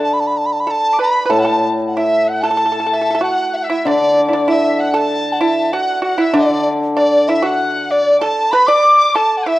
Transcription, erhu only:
0.70 A5
0.93 D6
1.00 B5
1.33 A5
1.98 E5
2.27 F#5
2.46 A5
3.24 F#5
3.64 E5
3.87 D5
4.52 E5
4.80 F#5
4.96 A5
5.74 F#5
6.03 F#5
6.21 E5
6.34 D5
6.97 D5
7.30 E5
7.46 F#5
7.91 D5
8.23 A5
8.55 B5
8.71 D6
9.16 A5
9.47 E5

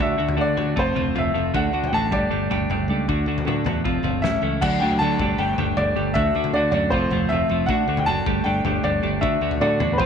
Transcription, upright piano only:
0.02 E5
0.41 D5
0.79 C5
1.18 E5
1.56 F#5
1.87 G5
1.94 A5
2.13 D5
4.22 E5
4.61 F#5
4.80 G5
4.99 A5
5.38 G5
5.77 D5
6.14 E5
6.54 D5
6.71 D5
6.90 C5
7.29 E5
7.66 F#5
7.99 G5
8.06 A5
8.44 G5
8.84 D5
9.21 E5
9.61 D5
9.93 B4
9.98 C5

